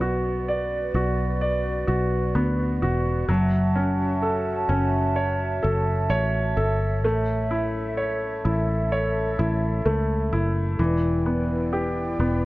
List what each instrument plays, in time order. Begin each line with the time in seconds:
Already playing: fingered electric bass B1, grand piano B3, flute section F#4 B4 D5
0.01 grand piano F#4
0.48 grand piano D5
0.94 fingered electric bass B1, grand piano F#4
1.41 grand piano D5
1.88 fingered electric bass B1, grand piano F#4
2.35 fingered electric bass D2, grand piano B3
2.82 fingered electric bass E1, grand piano F#4
3.28 fingered electric bass F#1, grand piano F#3, flute section C#5 E5 A5
3.76 grand piano C#4
4.23 grand piano A4
4.69 fingered electric bass F#1, grand piano C#4
5.16 grand piano C#5
5.63 fingered electric bass F#1, grand piano A4
6.10 fingered electric bass A1, grand piano C#5
6.57 fingered electric bass G1, grand piano A4
7.04 fingered electric bass A1, grand piano A3, flute section A4
7.51 grand piano E4
7.97 grand piano C#5
8.44 fingered electric bass A1, grand piano E4
8.92 grand piano C#5
9.38 fingered electric bass A1, grand piano E4
9.85 fingered electric bass C#2, grand piano A3
10.33 fingered electric bass F#1, grand piano E4
10.79 fingered electric bass E1, grand piano E3, flute section E4 B4 D5 G5
11.26 grand piano B3
11.72 grand piano G4
12.19 fingered electric bass E1, grand piano B3